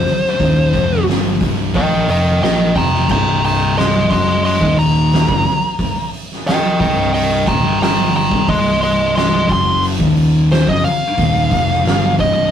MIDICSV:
0, 0, Header, 1, 5, 480
1, 0, Start_track
1, 0, Key_signature, -3, "minor"
1, 0, Tempo, 673401
1, 285, Time_signature, 4, 2, 24, 8
1, 8919, End_track
2, 0, Start_track
2, 0, Title_t, "Lead electric guitar"
2, 0, Program_c, 0, 29
2, 0, Note_on_c, 0, 72, 86
2, 738, Note_off_c, 0, 72, 0
2, 1254, Note_on_c, 0, 75, 86
2, 1258, Note_on_c, 0, 79, 95
2, 1485, Note_off_c, 0, 79, 0
2, 1490, Note_off_c, 0, 75, 0
2, 1500, Note_on_c, 0, 75, 83
2, 1507, Note_on_c, 0, 79, 73
2, 1718, Note_off_c, 0, 75, 0
2, 1728, Note_off_c, 0, 79, 0
2, 1734, Note_on_c, 0, 75, 86
2, 1740, Note_on_c, 0, 79, 66
2, 1954, Note_off_c, 0, 75, 0
2, 1957, Note_off_c, 0, 79, 0
2, 1966, Note_on_c, 0, 79, 84
2, 1978, Note_on_c, 0, 82, 93
2, 2189, Note_off_c, 0, 79, 0
2, 2205, Note_off_c, 0, 82, 0
2, 2217, Note_on_c, 0, 79, 80
2, 2224, Note_on_c, 0, 82, 94
2, 2435, Note_off_c, 0, 79, 0
2, 2448, Note_off_c, 0, 82, 0
2, 2457, Note_on_c, 0, 79, 80
2, 2462, Note_on_c, 0, 82, 75
2, 2675, Note_off_c, 0, 79, 0
2, 2685, Note_off_c, 0, 82, 0
2, 2692, Note_on_c, 0, 75, 87
2, 2699, Note_on_c, 0, 84, 93
2, 2912, Note_off_c, 0, 75, 0
2, 2925, Note_off_c, 0, 84, 0
2, 2935, Note_on_c, 0, 75, 60
2, 2941, Note_on_c, 0, 84, 76
2, 3154, Note_off_c, 0, 75, 0
2, 3166, Note_off_c, 0, 84, 0
2, 3173, Note_on_c, 0, 75, 78
2, 3181, Note_on_c, 0, 84, 75
2, 3393, Note_off_c, 0, 75, 0
2, 3406, Note_off_c, 0, 84, 0
2, 3414, Note_on_c, 0, 82, 106
2, 4341, Note_off_c, 0, 82, 0
2, 4612, Note_on_c, 0, 75, 101
2, 4616, Note_on_c, 0, 79, 119
2, 4842, Note_off_c, 0, 75, 0
2, 4844, Note_off_c, 0, 79, 0
2, 4851, Note_on_c, 0, 75, 64
2, 4854, Note_on_c, 0, 79, 80
2, 5072, Note_off_c, 0, 75, 0
2, 5083, Note_off_c, 0, 79, 0
2, 5091, Note_on_c, 0, 75, 86
2, 5098, Note_on_c, 0, 79, 84
2, 5312, Note_off_c, 0, 75, 0
2, 5321, Note_off_c, 0, 79, 0
2, 5329, Note_on_c, 0, 79, 89
2, 5333, Note_on_c, 0, 82, 95
2, 5551, Note_off_c, 0, 79, 0
2, 5562, Note_off_c, 0, 82, 0
2, 5580, Note_on_c, 0, 79, 81
2, 5589, Note_on_c, 0, 82, 84
2, 5797, Note_off_c, 0, 79, 0
2, 5810, Note_off_c, 0, 82, 0
2, 5816, Note_on_c, 0, 79, 79
2, 5821, Note_on_c, 0, 82, 95
2, 6035, Note_off_c, 0, 79, 0
2, 6047, Note_off_c, 0, 82, 0
2, 6050, Note_on_c, 0, 75, 83
2, 6059, Note_on_c, 0, 84, 94
2, 6271, Note_off_c, 0, 75, 0
2, 6286, Note_off_c, 0, 84, 0
2, 6297, Note_on_c, 0, 75, 92
2, 6302, Note_on_c, 0, 84, 81
2, 6516, Note_off_c, 0, 75, 0
2, 6526, Note_off_c, 0, 84, 0
2, 6540, Note_on_c, 0, 75, 97
2, 6548, Note_on_c, 0, 84, 114
2, 6757, Note_off_c, 0, 75, 0
2, 6771, Note_off_c, 0, 84, 0
2, 6790, Note_on_c, 0, 84, 85
2, 7012, Note_off_c, 0, 84, 0
2, 7498, Note_on_c, 0, 72, 112
2, 7617, Note_off_c, 0, 72, 0
2, 7617, Note_on_c, 0, 75, 85
2, 7728, Note_on_c, 0, 77, 113
2, 7729, Note_off_c, 0, 75, 0
2, 8660, Note_off_c, 0, 77, 0
2, 8697, Note_on_c, 0, 75, 87
2, 8919, Note_off_c, 0, 75, 0
2, 8919, End_track
3, 0, Start_track
3, 0, Title_t, "Distorted electric guitar"
3, 0, Program_c, 1, 30
3, 278, Note_on_c, 1, 39, 109
3, 281, Note_on_c, 1, 46, 103
3, 286, Note_on_c, 1, 51, 112
3, 515, Note_off_c, 1, 39, 0
3, 516, Note_off_c, 1, 46, 0
3, 519, Note_off_c, 1, 51, 0
3, 519, Note_on_c, 1, 41, 105
3, 520, Note_on_c, 1, 48, 102
3, 526, Note_on_c, 1, 53, 110
3, 752, Note_off_c, 1, 41, 0
3, 755, Note_on_c, 1, 43, 83
3, 756, Note_off_c, 1, 48, 0
3, 759, Note_off_c, 1, 53, 0
3, 760, Note_on_c, 1, 50, 86
3, 763, Note_on_c, 1, 55, 93
3, 991, Note_off_c, 1, 43, 0
3, 996, Note_off_c, 1, 50, 0
3, 996, Note_on_c, 1, 36, 96
3, 997, Note_off_c, 1, 55, 0
3, 999, Note_on_c, 1, 43, 98
3, 1007, Note_on_c, 1, 48, 104
3, 1234, Note_off_c, 1, 36, 0
3, 1235, Note_off_c, 1, 43, 0
3, 1239, Note_off_c, 1, 48, 0
3, 1241, Note_on_c, 1, 46, 106
3, 1245, Note_on_c, 1, 53, 105
3, 1251, Note_on_c, 1, 58, 112
3, 1476, Note_off_c, 1, 46, 0
3, 1478, Note_off_c, 1, 53, 0
3, 1481, Note_off_c, 1, 58, 0
3, 1481, Note_on_c, 1, 41, 80
3, 1487, Note_on_c, 1, 48, 85
3, 1488, Note_on_c, 1, 53, 80
3, 1716, Note_off_c, 1, 41, 0
3, 1719, Note_off_c, 1, 48, 0
3, 1720, Note_off_c, 1, 53, 0
3, 1722, Note_on_c, 1, 46, 80
3, 1729, Note_on_c, 1, 53, 93
3, 1733, Note_on_c, 1, 58, 99
3, 1957, Note_off_c, 1, 46, 0
3, 1958, Note_off_c, 1, 53, 0
3, 1961, Note_on_c, 1, 41, 97
3, 1962, Note_off_c, 1, 58, 0
3, 1963, Note_on_c, 1, 48, 92
3, 1967, Note_on_c, 1, 53, 92
3, 2193, Note_off_c, 1, 41, 0
3, 2196, Note_on_c, 1, 36, 107
3, 2197, Note_off_c, 1, 48, 0
3, 2199, Note_off_c, 1, 53, 0
3, 2201, Note_on_c, 1, 43, 109
3, 2208, Note_on_c, 1, 48, 105
3, 2914, Note_off_c, 1, 36, 0
3, 2916, Note_off_c, 1, 43, 0
3, 2920, Note_off_c, 1, 48, 0
3, 2925, Note_on_c, 1, 42, 92
3, 2929, Note_on_c, 1, 49, 94
3, 2932, Note_on_c, 1, 54, 107
3, 3278, Note_off_c, 1, 42, 0
3, 3280, Note_off_c, 1, 49, 0
3, 3282, Note_off_c, 1, 54, 0
3, 3284, Note_on_c, 1, 39, 92
3, 3292, Note_on_c, 1, 46, 97
3, 3293, Note_on_c, 1, 51, 93
3, 3757, Note_off_c, 1, 39, 0
3, 3762, Note_off_c, 1, 46, 0
3, 3762, Note_off_c, 1, 51, 0
3, 3764, Note_on_c, 1, 42, 89
3, 3770, Note_on_c, 1, 49, 101
3, 3878, Note_off_c, 1, 42, 0
3, 3881, Note_off_c, 1, 49, 0
3, 4842, Note_on_c, 1, 36, 94
3, 4848, Note_on_c, 1, 43, 87
3, 4851, Note_on_c, 1, 48, 96
3, 5317, Note_off_c, 1, 36, 0
3, 5320, Note_off_c, 1, 43, 0
3, 5321, Note_off_c, 1, 48, 0
3, 5324, Note_on_c, 1, 39, 73
3, 5329, Note_on_c, 1, 46, 99
3, 5438, Note_off_c, 1, 39, 0
3, 5440, Note_off_c, 1, 46, 0
3, 5443, Note_on_c, 1, 43, 97
3, 5449, Note_on_c, 1, 50, 100
3, 5452, Note_on_c, 1, 55, 99
3, 5915, Note_off_c, 1, 43, 0
3, 5918, Note_on_c, 1, 36, 99
3, 5920, Note_off_c, 1, 50, 0
3, 5922, Note_off_c, 1, 55, 0
3, 5924, Note_on_c, 1, 43, 108
3, 6035, Note_off_c, 1, 36, 0
3, 6038, Note_off_c, 1, 43, 0
3, 6043, Note_on_c, 1, 36, 95
3, 6050, Note_on_c, 1, 43, 109
3, 6051, Note_on_c, 1, 48, 106
3, 6757, Note_off_c, 1, 36, 0
3, 6760, Note_on_c, 1, 42, 98
3, 6761, Note_off_c, 1, 43, 0
3, 6762, Note_off_c, 1, 48, 0
3, 6763, Note_on_c, 1, 49, 102
3, 6768, Note_on_c, 1, 54, 103
3, 7129, Note_off_c, 1, 42, 0
3, 7129, Note_on_c, 1, 39, 84
3, 7135, Note_off_c, 1, 49, 0
3, 7135, Note_on_c, 1, 46, 102
3, 7140, Note_off_c, 1, 54, 0
3, 7140, Note_on_c, 1, 51, 95
3, 7600, Note_off_c, 1, 39, 0
3, 7603, Note_on_c, 1, 42, 95
3, 7604, Note_off_c, 1, 46, 0
3, 7606, Note_off_c, 1, 51, 0
3, 7610, Note_on_c, 1, 49, 109
3, 7718, Note_off_c, 1, 42, 0
3, 7722, Note_off_c, 1, 49, 0
3, 7963, Note_on_c, 1, 39, 99
3, 7968, Note_on_c, 1, 46, 113
3, 7974, Note_on_c, 1, 51, 110
3, 8198, Note_off_c, 1, 39, 0
3, 8201, Note_off_c, 1, 46, 0
3, 8201, Note_on_c, 1, 41, 117
3, 8203, Note_off_c, 1, 51, 0
3, 8207, Note_on_c, 1, 48, 107
3, 8211, Note_on_c, 1, 53, 115
3, 8437, Note_off_c, 1, 41, 0
3, 8440, Note_off_c, 1, 48, 0
3, 8442, Note_off_c, 1, 53, 0
3, 8444, Note_on_c, 1, 43, 85
3, 8449, Note_on_c, 1, 50, 91
3, 8453, Note_on_c, 1, 55, 105
3, 8679, Note_off_c, 1, 43, 0
3, 8681, Note_off_c, 1, 50, 0
3, 8683, Note_off_c, 1, 55, 0
3, 8689, Note_on_c, 1, 36, 84
3, 8692, Note_on_c, 1, 43, 98
3, 8697, Note_on_c, 1, 48, 98
3, 8919, Note_off_c, 1, 36, 0
3, 8919, Note_off_c, 1, 43, 0
3, 8919, Note_off_c, 1, 48, 0
3, 8919, End_track
4, 0, Start_track
4, 0, Title_t, "Picked electric bass"
4, 0, Program_c, 2, 34
4, 285, Note_on_c, 2, 27, 86
4, 509, Note_off_c, 2, 27, 0
4, 525, Note_on_c, 2, 29, 103
4, 749, Note_off_c, 2, 29, 0
4, 762, Note_on_c, 2, 31, 100
4, 987, Note_off_c, 2, 31, 0
4, 1006, Note_on_c, 2, 24, 104
4, 1229, Note_off_c, 2, 24, 0
4, 1243, Note_on_c, 2, 34, 104
4, 1468, Note_off_c, 2, 34, 0
4, 1481, Note_on_c, 2, 29, 89
4, 1707, Note_off_c, 2, 29, 0
4, 1719, Note_on_c, 2, 34, 97
4, 1946, Note_off_c, 2, 34, 0
4, 1965, Note_on_c, 2, 29, 93
4, 2188, Note_off_c, 2, 29, 0
4, 2208, Note_on_c, 2, 24, 90
4, 2898, Note_off_c, 2, 24, 0
4, 2928, Note_on_c, 2, 30, 98
4, 3262, Note_off_c, 2, 30, 0
4, 3288, Note_on_c, 2, 27, 89
4, 3738, Note_off_c, 2, 27, 0
4, 3766, Note_on_c, 2, 30, 93
4, 3877, Note_off_c, 2, 30, 0
4, 4848, Note_on_c, 2, 24, 101
4, 5298, Note_off_c, 2, 24, 0
4, 5328, Note_on_c, 2, 27, 99
4, 5438, Note_off_c, 2, 27, 0
4, 5448, Note_on_c, 2, 31, 90
4, 5899, Note_off_c, 2, 31, 0
4, 5927, Note_on_c, 2, 24, 97
4, 6038, Note_off_c, 2, 24, 0
4, 6047, Note_on_c, 2, 24, 91
4, 6739, Note_off_c, 2, 24, 0
4, 6767, Note_on_c, 2, 30, 104
4, 7102, Note_off_c, 2, 30, 0
4, 7127, Note_on_c, 2, 27, 95
4, 7579, Note_off_c, 2, 27, 0
4, 7608, Note_on_c, 2, 30, 104
4, 7720, Note_off_c, 2, 30, 0
4, 7969, Note_on_c, 2, 27, 95
4, 8192, Note_off_c, 2, 27, 0
4, 8207, Note_on_c, 2, 29, 98
4, 8430, Note_off_c, 2, 29, 0
4, 8451, Note_on_c, 2, 31, 95
4, 8673, Note_off_c, 2, 31, 0
4, 8690, Note_on_c, 2, 24, 99
4, 8912, Note_off_c, 2, 24, 0
4, 8919, End_track
5, 0, Start_track
5, 0, Title_t, "Drums"
5, 44, Note_on_c, 9, 46, 50
5, 115, Note_off_c, 9, 46, 0
5, 181, Note_on_c, 9, 38, 35
5, 252, Note_off_c, 9, 38, 0
5, 285, Note_on_c, 9, 36, 109
5, 285, Note_on_c, 9, 46, 71
5, 356, Note_off_c, 9, 36, 0
5, 357, Note_off_c, 9, 46, 0
5, 524, Note_on_c, 9, 36, 110
5, 525, Note_on_c, 9, 46, 55
5, 595, Note_off_c, 9, 36, 0
5, 597, Note_off_c, 9, 46, 0
5, 664, Note_on_c, 9, 38, 35
5, 735, Note_off_c, 9, 38, 0
5, 766, Note_on_c, 9, 46, 81
5, 781, Note_on_c, 9, 38, 108
5, 837, Note_off_c, 9, 46, 0
5, 852, Note_off_c, 9, 38, 0
5, 1004, Note_on_c, 9, 46, 59
5, 1005, Note_on_c, 9, 36, 106
5, 1075, Note_off_c, 9, 46, 0
5, 1076, Note_off_c, 9, 36, 0
5, 1242, Note_on_c, 9, 46, 90
5, 1243, Note_on_c, 9, 36, 119
5, 1314, Note_off_c, 9, 36, 0
5, 1314, Note_off_c, 9, 46, 0
5, 1484, Note_on_c, 9, 46, 65
5, 1555, Note_off_c, 9, 46, 0
5, 1722, Note_on_c, 9, 46, 80
5, 1737, Note_on_c, 9, 38, 116
5, 1793, Note_off_c, 9, 46, 0
5, 1808, Note_off_c, 9, 38, 0
5, 1964, Note_on_c, 9, 36, 95
5, 1964, Note_on_c, 9, 46, 53
5, 2035, Note_off_c, 9, 36, 0
5, 2035, Note_off_c, 9, 46, 0
5, 2099, Note_on_c, 9, 38, 34
5, 2170, Note_off_c, 9, 38, 0
5, 2205, Note_on_c, 9, 36, 101
5, 2205, Note_on_c, 9, 49, 87
5, 2276, Note_off_c, 9, 49, 0
5, 2277, Note_off_c, 9, 36, 0
5, 2449, Note_on_c, 9, 46, 63
5, 2520, Note_off_c, 9, 46, 0
5, 2689, Note_on_c, 9, 46, 82
5, 2704, Note_on_c, 9, 38, 108
5, 2760, Note_off_c, 9, 46, 0
5, 2775, Note_off_c, 9, 38, 0
5, 2927, Note_on_c, 9, 36, 99
5, 2927, Note_on_c, 9, 46, 62
5, 2998, Note_off_c, 9, 36, 0
5, 2998, Note_off_c, 9, 46, 0
5, 3167, Note_on_c, 9, 46, 87
5, 3238, Note_off_c, 9, 46, 0
5, 3287, Note_on_c, 9, 36, 107
5, 3359, Note_off_c, 9, 36, 0
5, 3414, Note_on_c, 9, 46, 58
5, 3486, Note_off_c, 9, 46, 0
5, 3648, Note_on_c, 9, 46, 85
5, 3663, Note_on_c, 9, 38, 104
5, 3719, Note_off_c, 9, 46, 0
5, 3734, Note_off_c, 9, 38, 0
5, 3768, Note_on_c, 9, 36, 113
5, 3839, Note_off_c, 9, 36, 0
5, 3884, Note_on_c, 9, 46, 47
5, 3956, Note_off_c, 9, 46, 0
5, 4127, Note_on_c, 9, 36, 100
5, 4128, Note_on_c, 9, 46, 84
5, 4199, Note_off_c, 9, 36, 0
5, 4200, Note_off_c, 9, 46, 0
5, 4371, Note_on_c, 9, 46, 55
5, 4442, Note_off_c, 9, 46, 0
5, 4503, Note_on_c, 9, 38, 34
5, 4575, Note_off_c, 9, 38, 0
5, 4610, Note_on_c, 9, 46, 69
5, 4625, Note_on_c, 9, 38, 120
5, 4681, Note_off_c, 9, 46, 0
5, 4696, Note_off_c, 9, 38, 0
5, 4848, Note_on_c, 9, 36, 99
5, 4851, Note_on_c, 9, 46, 55
5, 4919, Note_off_c, 9, 36, 0
5, 4922, Note_off_c, 9, 46, 0
5, 5089, Note_on_c, 9, 46, 88
5, 5160, Note_off_c, 9, 46, 0
5, 5326, Note_on_c, 9, 46, 55
5, 5327, Note_on_c, 9, 36, 109
5, 5397, Note_off_c, 9, 46, 0
5, 5398, Note_off_c, 9, 36, 0
5, 5565, Note_on_c, 9, 46, 79
5, 5580, Note_on_c, 9, 38, 113
5, 5637, Note_off_c, 9, 46, 0
5, 5652, Note_off_c, 9, 38, 0
5, 5805, Note_on_c, 9, 46, 54
5, 5877, Note_off_c, 9, 46, 0
5, 5927, Note_on_c, 9, 36, 98
5, 5943, Note_on_c, 9, 38, 34
5, 5999, Note_off_c, 9, 36, 0
5, 6014, Note_off_c, 9, 38, 0
5, 6047, Note_on_c, 9, 36, 109
5, 6048, Note_on_c, 9, 46, 75
5, 6119, Note_off_c, 9, 36, 0
5, 6119, Note_off_c, 9, 46, 0
5, 6286, Note_on_c, 9, 46, 63
5, 6357, Note_off_c, 9, 46, 0
5, 6526, Note_on_c, 9, 46, 80
5, 6541, Note_on_c, 9, 38, 105
5, 6597, Note_off_c, 9, 46, 0
5, 6612, Note_off_c, 9, 38, 0
5, 6765, Note_on_c, 9, 46, 64
5, 6767, Note_on_c, 9, 36, 111
5, 6837, Note_off_c, 9, 46, 0
5, 6839, Note_off_c, 9, 36, 0
5, 7004, Note_on_c, 9, 46, 100
5, 7075, Note_off_c, 9, 46, 0
5, 7128, Note_on_c, 9, 36, 104
5, 7199, Note_off_c, 9, 36, 0
5, 7247, Note_on_c, 9, 46, 62
5, 7319, Note_off_c, 9, 46, 0
5, 7489, Note_on_c, 9, 46, 83
5, 7503, Note_on_c, 9, 38, 112
5, 7560, Note_off_c, 9, 46, 0
5, 7575, Note_off_c, 9, 38, 0
5, 7608, Note_on_c, 9, 36, 95
5, 7680, Note_off_c, 9, 36, 0
5, 7730, Note_on_c, 9, 46, 56
5, 7801, Note_off_c, 9, 46, 0
5, 7967, Note_on_c, 9, 46, 82
5, 7969, Note_on_c, 9, 36, 103
5, 8038, Note_off_c, 9, 46, 0
5, 8040, Note_off_c, 9, 36, 0
5, 8206, Note_on_c, 9, 46, 63
5, 8208, Note_on_c, 9, 36, 104
5, 8277, Note_off_c, 9, 46, 0
5, 8279, Note_off_c, 9, 36, 0
5, 8346, Note_on_c, 9, 38, 33
5, 8417, Note_off_c, 9, 38, 0
5, 8449, Note_on_c, 9, 46, 84
5, 8464, Note_on_c, 9, 38, 105
5, 8520, Note_off_c, 9, 46, 0
5, 8535, Note_off_c, 9, 38, 0
5, 8687, Note_on_c, 9, 46, 56
5, 8688, Note_on_c, 9, 36, 104
5, 8758, Note_off_c, 9, 46, 0
5, 8760, Note_off_c, 9, 36, 0
5, 8919, End_track
0, 0, End_of_file